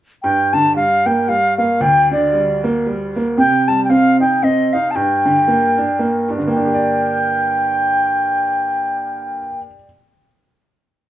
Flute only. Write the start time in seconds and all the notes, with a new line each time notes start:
0.23 G5
0.53 A5
0.76 F5
1.06 G5
1.29 F5
1.58 F5
1.81 G5
2.12 D5
3.39 G5
3.68 A5
3.85 G5
3.90 F5
4.21 G5
4.43 D#5
4.73 F5
4.91 A5
4.95 G5
6.50 G5